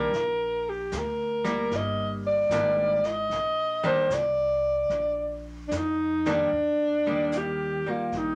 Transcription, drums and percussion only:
0.13 brush sweep, snare
0.92 snare, hi-hat pedal
1.45 snare
1.71 brush sweep, snare
2.51 snare, hi-hat pedal
3.04 snare
3.31 brush sweep, snare
4.10 snare, hi-hat pedal
4.90 brush sweep, snare
5.71 snare, hi-hat pedal
6.25 snare
6.52 brush sweep
7.32 snare, hi-hat pedal
8.12 brush sweep, snare

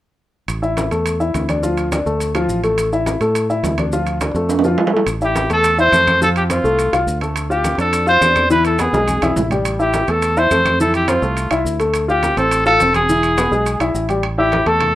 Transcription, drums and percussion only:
0.48 high conga, high timbale, maracas
0.63 high conga, maracas
0.77 high conga, high timbale, maracas
0.91 high conga, high timbale, maracas
1.06 high conga, high timbale, maracas
1.20 high conga, maracas
1.34 high conga, high timbale, maracas
1.49 high conga, high timbale, maracas
1.63 maracas
1.77 high conga, high timbale, maracas
1.92 high conga, high timbale, maracas
2.06 high conga, maracas
2.20 high conga, high timbale, maracas
2.35 high conga, high timbale, maracas
2.49 high conga, maracas
2.64 high conga, high timbale, maracas
2.78 high conga, high timbale, maracas
2.92 high conga, maracas
3.06 high conga, high timbale, maracas
3.21 high conga, high timbale, maracas
3.35 high conga, high timbale, maracas
3.50 high conga, maracas
3.64 high conga, high timbale, low timbale, maracas
3.78 high conga, high timbale, maracas
3.92 high conga, maracas
4.07 high conga, high timbale, maracas
4.21 high conga, high timbale, maracas
4.35 maracas
4.49 high conga, high timbale, maracas
4.59 high timbale
4.64 high conga, maracas
4.68 high timbale
4.78 low timbale
4.87 low timbale
4.97 low timbale
5.07 high conga, high timbale, maracas
5.21 high conga, maracas
5.36 high conga, high timbale, maracas
5.50 high conga, high timbale, maracas
5.64 high conga, high timbale, maracas
5.78 high conga, maracas
5.92 high conga, high timbale, maracas
6.07 high conga, high timbale, maracas
6.22 high conga, maracas
6.36 high conga, high timbale, maracas
6.50 high conga, high timbale, maracas
6.65 maracas
6.79 high conga, high timbale, maracas
6.93 high conga, high timbale, maracas
7.08 high conga, maracas
7.21 high conga, high timbale, maracas
7.36 high conga, high timbale, maracas
7.51 high conga, maracas
7.64 high conga, high timbale, maracas
7.79 high timbale, maracas
7.93 high conga, high timbale, maracas
8.07 high conga, maracas
8.22 high conga, high timbale, maracas
8.36 high conga, high timbale, maracas
8.50 high conga, maracas
8.65 high conga, high timbale, maracas
8.79 high conga, high timbale, maracas
8.94 high conga, maracas
9.08 high conga, high timbale, maracas
9.22 high conga, high timbale, maracas
9.36 low conga, low timbale, maracas
9.51 low conga, high timbale, maracas
9.65 high conga, high timbale, maracas
9.79 high conga, maracas
9.94 high conga, high timbale, maracas
10.08 high conga, high timbale, maracas
10.22 high conga, high timbale, maracas
10.37 high conga, maracas
10.51 high conga, high timbale, maracas
10.65 high conga, high timbale, maracas
10.80 high conga, maracas
10.94 high conga, high timbale, maracas
11.08 high conga, high timbale, maracas
11.23 maracas
11.37 high conga, high timbale, maracas
11.51 high conga, high timbale, maracas
11.66 high conga, maracas
11.80 high conga, high timbale, maracas
11.94 high conga, high timbale, maracas
12.09 high conga, maracas
12.23 high conga, high timbale, maracas
12.37 high conga, high timbale, maracas
12.51 high conga, high timbale, maracas
12.66 high conga, maracas
12.80 high conga, high timbale, maracas
12.94 high conga, high timbale, maracas
13.09 high conga, maracas
13.23 high conga, high timbale, maracas
13.38 high conga, high timbale, maracas
13.52 high conga, maracas
13.66 high conga, high timbale, maracas
13.80 high conga, high timbale, maracas
13.95 high conga, maracas
14.09 high conga, high timbale, maracas
14.23 high conga, high timbale
14.39 high conga
14.52 high conga, high timbale
14.66 high timbale
14.80 high conga, low conga, high timbale

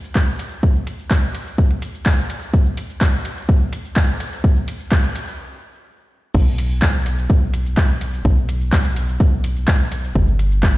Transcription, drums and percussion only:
0.04 shaker
0.15 kick, clap, shaker
0.39 closed hi-hat, shaker
0.52 shaker
0.63 kick, shaker
0.75 shaker
0.87 closed hi-hat, shaker
0.99 shaker
1.11 kick, clap, shaker
1.35 closed hi-hat, shaker
1.47 shaker
1.58 kick, shaker
1.71 closed hi-hat
1.82 closed hi-hat, shaker
1.94 shaker
2.06 kick, clap, shaker
2.30 closed hi-hat, shaker
2.42 shaker
2.54 kick, shaker
2.66 shaker
2.77 closed hi-hat, shaker
2.90 shaker
3.01 kick, clap, shaker
3.25 closed hi-hat, shaker
3.37 shaker
3.49 kick, shaker
3.73 closed hi-hat, shaker
3.85 shaker
3.96 kick, clap, shaker
4.20 closed hi-hat, shaker
4.33 shaker
4.44 kick, shaker
4.56 shaker
4.68 closed hi-hat, shaker
4.80 shaker
4.92 kick, clap, shaker
5.04 shaker
5.16 closed hi-hat, shaker
5.28 shaker
6.35 kick, crash, shaker
6.47 shaker
6.58 closed hi-hat, shaker
6.71 shaker
6.82 kick, clap, shaker
7.06 closed hi-hat, shaker
7.18 shaker
7.30 kick, shaker
7.54 closed hi-hat, shaker
7.66 shaker
7.77 kick, clap, shaker
8.01 closed hi-hat, shaker
8.14 shaker
8.25 kick, shaker
8.37 shaker
8.49 closed hi-hat, shaker
8.61 shaker
8.73 kick, clap, shaker
8.85 closed hi-hat
8.96 closed hi-hat, shaker
9.09 shaker
9.20 kick, shaker
9.44 closed hi-hat, shaker
9.56 shaker
9.68 kick, clap, shaker
9.92 closed hi-hat, shaker
10.04 shaker
10.15 kick, shaker
10.28 shaker
10.39 closed hi-hat, shaker
10.52 shaker
10.63 kick, clap, shaker

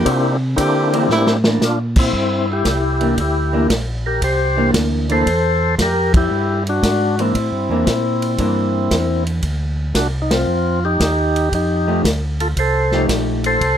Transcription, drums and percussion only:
0.06 kick, ride
0.58 kick, hi-hat pedal, ride
0.93 ride
1.10 snare
1.27 snare
1.44 snare
1.61 snare, hi-hat pedal
1.96 kick, crash
2.13 kick
2.65 kick, snare, hi-hat pedal, ride
3.01 ride
3.17 kick, ride
3.70 kick, snare, hi-hat pedal, ride
4.22 kick, ride
4.74 kick, snare, hi-hat pedal, ride
5.09 ride
5.26 kick, ride
5.78 kick, snare, hi-hat pedal, ride
6.14 kick, ride
6.67 ride
6.83 kick, snare, hi-hat pedal, ride
7.19 ride
7.35 kick, ride
7.87 kick, snare, hi-hat pedal, ride
8.22 ride
8.38 kick, ride
8.91 kick, snare, hi-hat pedal, ride
9.27 ride
9.42 kick, ride
9.95 kick, snare, hi-hat pedal, ride
10.31 snare, ride
11.00 kick, snare, hi-hat pedal, ride
11.36 ride
11.52 kick, ride
12.04 kick, snare, hi-hat pedal, ride
12.40 ride
12.57 kick, ride
12.92 snare
13.09 kick, snare, hi-hat pedal, ride
13.44 ride
13.61 kick, ride

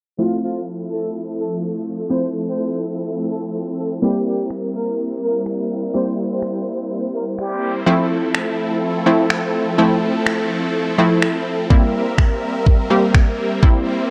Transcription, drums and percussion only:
4.51 finger snap
5.46 finger snap
6.43 finger snap
7.38 finger snap
8.35 finger snap
9.30 finger snap
10.27 finger snap
11.22 finger snap
11.71 kick
12.18 finger snap, kick
12.67 kick
13.14 finger snap, kick
13.62 kick

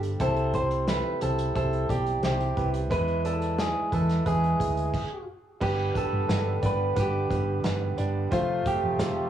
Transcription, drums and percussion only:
0.03 closed hi-hat
0.20 kick, closed hi-hat
0.36 closed hi-hat
0.54 kick, closed hi-hat
0.71 closed hi-hat
0.88 snare, closed hi-hat
1.21 closed hi-hat
1.39 closed hi-hat
1.55 kick, closed hi-hat
1.73 closed hi-hat
1.89 kick, closed hi-hat
2.06 closed hi-hat
2.23 snare, closed hi-hat
2.40 closed hi-hat
2.57 kick, closed hi-hat
2.74 closed hi-hat
2.91 kick, closed hi-hat
3.08 closed hi-hat
3.25 closed hi-hat
3.42 closed hi-hat
3.58 snare, closed hi-hat
3.92 kick, closed hi-hat
4.09 snare, closed hi-hat
4.26 kick, closed hi-hat
4.44 closed hi-hat
4.60 kick, closed hi-hat
4.77 closed hi-hat
4.94 kick, crash
5.61 kick, crash
5.95 kick, closed hi-hat
6.29 snare, closed hi-hat
6.63 kick, closed hi-hat
6.97 kick, closed hi-hat
7.31 kick, closed hi-hat
7.64 snare, closed hi-hat
7.98 closed hi-hat
8.32 kick, closed hi-hat
8.66 kick, closed hi-hat
8.99 snare, closed hi-hat

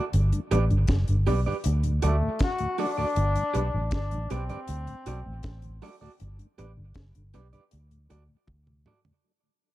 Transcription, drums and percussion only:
0.13 closed hi-hat
0.32 closed hi-hat
0.51 closed hi-hat
0.70 closed hi-hat
0.87 kick, snare, closed hi-hat
1.08 closed hi-hat
1.26 open hi-hat
1.64 closed hi-hat
1.83 closed hi-hat
2.02 closed hi-hat
2.39 kick, snare, closed hi-hat
2.58 closed hi-hat
2.78 open hi-hat
3.16 closed hi-hat
3.35 closed hi-hat
3.54 closed hi-hat
3.91 kick, snare, closed hi-hat
4.11 closed hi-hat
4.30 closed hi-hat
4.49 closed hi-hat
4.68 closed hi-hat
4.87 closed hi-hat
5.06 closed hi-hat
5.43 kick, snare, closed hi-hat
5.62 closed hi-hat
5.82 open hi-hat
6.20 closed hi-hat
6.39 closed hi-hat
6.58 closed hi-hat
6.94 kick, snare, closed hi-hat
7.15 closed hi-hat
7.34 closed hi-hat
7.53 closed hi-hat
7.71 closed hi-hat
7.91 closed hi-hat
8.10 closed hi-hat
8.48 kick, high tom
8.67 mid tom
8.86 mid tom
9.05 floor tom

